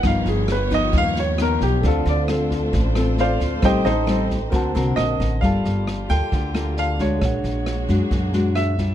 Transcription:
<<
  \new Staff \with { instrumentName = "Tine electric piano" } { \time 4/4 \key g \minor \tempo 4 = 134 <ais' b' dis'' f''>1 | <a' c'' d'' f''>1 | <a' c'' ees'' g''>2 <bes' c'' fis'' a''>2 | <d'' f'' a''>2. <d'' f'' a''>4 |
<d' aes' cis'' fis''>1 | }
  \new Staff \with { instrumentName = "Grand piano" } { \time 4/4 \key g \minor f''8 aes'8 b'8 dis''8 f''8 cis''8 ais'8 g'8 | a'8 d''8 r2 <f' c'' d'' f''>4 | <g' c'' ees'' g''>8 <ees' a' c'' ees''>4 r4. ees''4 | f''4. g''4. f''8 cis''8~ |
cis''4. r4. e''4 | }
  \new Staff \with { instrumentName = "String section" } { \time 4/4 \key g \minor << { cis''1 | c''1~ | c''1 | r1 |
r1 | } \\ { <b f' g'>1 | <a d'>1 | <a ees' g'>2 <bes d' fis'>2 | <f' g'>1 |
<bes fis' aes'>1 | } >> }
  \new Staff \with { instrumentName = "Nylon-string guitar" } { \time 4/4 \key g \minor << { <f b dis'>4 r8 <f b dis'>4. <f b dis'>4 | <c' f' a'>4 <c' f' a'>4. <c' f' a'>4. | <g c' ees'>8 r8 <g c' ees'>8 r8 <c' fis' bes'>8 <c' fis' bes'>4. | <bes f' a'>4 r8 <bes f' a'>4 <bes f' a'>4 <aes d' fis'>8~ |
<aes d' fis'>4. <aes d' fis'>4 <aes d' fis'>4 <g d' f'>8 | } \\ { g,2 g,2 | d2 a,2 | a,2 d2 | g2 d2 |
bes,2 bes,2 | } >> }
  \new Staff \with { instrumentName = "Upright bass" } { \clef bass \time 4/4 \key g \minor g,,8 g,,4. dis,4. b,,8 | d,8 d,4. a,,4. d,8 | a,,8 a,,4. d,8 c,8 bes,,8 a,,8 | g,,8 g,,4 d,16 r16 d,2 |
bes,,8 bes,,4 fis,16 r16 fis,2 | }
  \new DrumStaff \with { instrumentName = "Drums" } \drummode { \time 4/4 <bd ss sn>8 sn8 <ss sn>8 <bd sn>8 <bd sn>8 sn8 <ss sn>8 <bd sn>8 | <bd sn>8 sn8 <ss sn>8 <bd sn>8 <bd sn>8 <ss sn>8 sn8 <bd sn>8 | <bd ss sn>8 sn8 <ss sn>8 <bd sn>8 <bd sn>8 sn8 <ss sn>8 <bd sn>8 | <bd sn>8 sn8 <ss sn>8 <bd sn>8 <bd sn>8 <ss sn>8 sn8 <bd sn>8 |
<bd ss sn>8 sn8 <ss sn>8 <bd sn>8 <bd sn>8 sn8 <ss sn>8 <bd sn>8 | }
>>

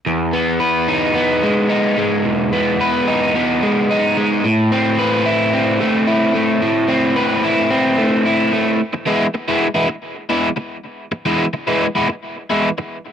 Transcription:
\new Staff \with { instrumentName = "Overdriven electric guitar" } { \time 4/4 \key e \major \tempo 4 = 110 e,8 b8 b'8 dis'8 b8 gis8 dis'8 gis8 | e,8 b8 b'8 dis'8 b8 gis8 dis'8 gis8 | a,8 c'8 b'8 e'8 c'8 a8 e'8 a8 | a,8 c'8 b'8 e'8 c'8 a8 e'8 a8 |
r8 <e gis b e'>16 r8 <e gis b e'>16 r16 <e gis b e'>16 r8. <e gis b e'>16 r4 | r8 <e gis b e'>16 r8 <e gis b e'>16 r16 <e gis b e'>16 r8. <e gis b e'>16 r4 | }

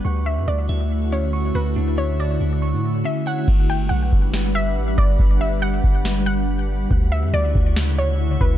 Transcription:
<<
  \new Staff \with { instrumentName = "Synth texture" } { \time 4/4 \key g \lydian \tempo 4 = 140 <fis'' cis''' e'''>1~ | <fis'' cis''' e'''>1 | <g' fis'' b''>1~ | <g' fis'' b''>1 |
<fis' e'' cis'''>1 | }
  \new Staff \with { instrumentName = "Synth pluck" } { \time 4/4 \key g \lydian r8 e''8 d''4. cis''4 b'8 | r8 cis''8 d''2 e''8 fis''8 | r8 g''8 fis''4. e''4 d''8 | r8 e''8 fis''4. fis''8 r4 |
r8 e''8 d''4. cis''4 b'8 | }
  \new Staff \with { instrumentName = "Clean electric guitar" } { \time 4/4 \key g \lydian cis'''4. e''4 cis'8 cis'''8 fis'8 | d'8 e''8 fis'8 e'8 cis'''4 cis'8 cis''8 | r1 | r1 |
r1 | }
  \new Staff \with { instrumentName = "Ambient pad" } { \time 4/4 \key g \lydian <d a e' fis'>1~ | <d a e' fis'>1 | <g d' b' fis''>1~ | <g d' b' fis''>1 |
<cis d e'>1 | }
  \new Staff \with { instrumentName = "808-style bass" } { \clef bass \time 4/4 \key g \lydian d,8. fis,16 d,8 d,2 d,8 | d,4. d,8. a,8. r4 | g,,4 b,,8 g,,4. a,,8 g,,8 | g,,4. g,,2~ g,,8 |
d,8. fis,16 d,8 d,2 d,8 | }
  \new DrumStaff \with { instrumentName = "Drums" } \drummode { \time 4/4 r4 r4 r4 r4 | r4 r4 r4 r4 | <cymc bd>4 r8 bd8 sn4 r8 bd8 | bd4 r8 bd8 sn4 r4 |
bd4 r8 bd8 sn4 r8 bd8 | }
>>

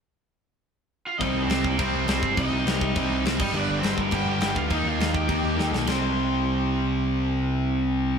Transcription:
<<
  \new Staff \with { instrumentName = "Overdriven electric guitar" } { \time 4/4 \key c \minor \tempo 4 = 205 r2. r8 <f' f''>8 | <ees' ees''>8. <c' c''>8. <bes bes'>8 <c' c''>4 <c' c''>4 | <ees' ees''>2. r8 <ees' ees''>8 | <d' d''>8. <c' c''>8. <bes bes'>8 <g' g''>8 <g' g''>4 <f' f''>8 |
<ees' ees''>8 <f' f''>4 <g' g''>2 r8 | c'''1~ | c'''1 | }
  \new Staff \with { instrumentName = "Distorted electric guitar" } { \clef bass \time 4/4 \key c \minor r1 | <c g c'>4 <c g c'>4 <c g c'>4 <c g c'>4 | <c g c'>4 <c g c'>4 <c g c'>4 <c g c'>8 r8 | <g, d g>4 <g, d g>4 <g, d g>4 <g, d g>4 |
<ees bes ees'>4 <ees bes ees'>4 <ees bes ees'>4 <ees bes ees'>4 | <c g c'>1~ | <c g c'>1 | }
  \new Staff \with { instrumentName = "Distorted electric guitar" } { \clef bass \time 4/4 \key c \minor r1 | <c g c'>4 <c g c'>4 <c g c'>4 <c g c'>4 | <c g c'>4 <c g c'>4 <c g c'>4 <c g c'>8 r8 | <g, d g>4 <g, d g>4 <g, d g>4 <g, d g>4 |
<ees bes ees'>4 <ees bes ees'>4 <ees bes ees'>4 <ees bes ees'>4 | <c g c'>1~ | <c g c'>1 | }
  \new Staff \with { instrumentName = "Picked electric bass" } { \clef bass \time 4/4 \key c \minor r1 | c,8 c,8 c,4 c,8 c,8 c,8 g,,8 | c,8 c,8 c,4 c,8 c,8 c,8 g,,8 | g,,8 g,,8 g,,4 g,,8 g,,8 g,,8 d,8 |
ees,8 ees,8 ees,4 ees,8 ees,8 ees,8 b,,8 | c,1~ | c,1 | }
  \new DrumStaff \with { instrumentName = "Drums" } \drummode { \time 4/4 r4 r4 r4 r4 | <cymc bd>4 <cymc sn>8 bd8 <cymc bd>4 <cymc sn>8 bd8 | <cymc bd>4 <cymc sn>8 bd8 <cymc bd>4 <cymc sn>8 <cymc bd>8 | cymc4 <cymc sn>8 bd8 <cymc bd>4 <cymc sn>8 bd8 |
<cymc bd>4 <cymc sn>8 bd8 <cymc bd>4 sn8 sn8 | <rb sn>4 r4 r4 r4 | r4 r4 r4 r4 | }
>>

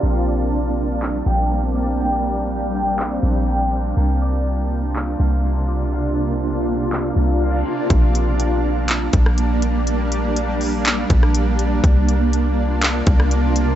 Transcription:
<<
  \new Staff \with { instrumentName = "Harp" } { \time 4/4 \key bes \major \tempo 4 = 122 c'8 d''2 g''8 c'8 d''8 | g''4. g''8 c'4 g''8 c'8 | bes8 d''2 f''8 bes8 d''8 | f''4. f''8 bes4 f''8 bes8 |
r1 | r1 | r1 | }
  \new Staff \with { instrumentName = "Ambient pad" } { \time 4/4 \key bes \major <g bes d'>1~ | <g bes d'>1 | <c bes d' f'>1~ | <c bes d' f'>1 |
<g bes d'>1~ | <g bes d'>1 | <c bes f'>1 | }
  \new Staff \with { instrumentName = "808-style bass" } { \clef bass \time 4/4 \key bes \major bes,,2~ bes,,8 bes,,4.~ | bes,,2~ bes,,8 bes,,4. | c,2~ c,8 c,4.~ | c,2~ c,8 c,4 r8 |
bes,,2~ bes,,8 bes,,4.~ | bes,,2~ bes,,8 bes,,4. | c,2~ c,8 c,4. | }
  \new DrumStaff \with { instrumentName = "Drums" } \drummode { \time 4/4 r4 r4 hc4 r4 | r4 r8 hho8 hc4 r4 | r4 r4 hc4 r4 | r4 r4 hc4 r4 |
<hh bd>8 hh8 hh4 <hc hh>8 <hh bd>16 ss16 hh8 hh8 | hh8 hh8 hh8 hho8 <hc hh>8 <hh bd>16 ss16 hh8 hh8 | <hh bd>8 hh8 hh4 <hc hh>8 <hh bd>16 ss16 hh8 hh8 | }
>>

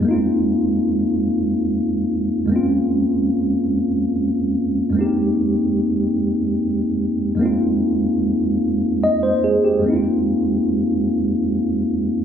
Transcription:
<<
  \new Staff \with { instrumentName = "Tine electric piano" } { \time 6/8 \key f \minor \tempo 4. = 49 r2. | r2. | r2. | r2 ees''16 c''16 aes'16 g'16~ |
g'16 r2 r8. | }
  \new Staff \with { instrumentName = "Tine electric piano" } { \time 6/8 \key f \minor <f, aes bes b c' ees' f'>2. | <f, aes bes c' des' f'>2. | <f, aes bes c' ees' g'>2. | <f, aes bes c' ees' f'>2. |
<f, aes bes c' ees' e' f'>2. | }
>>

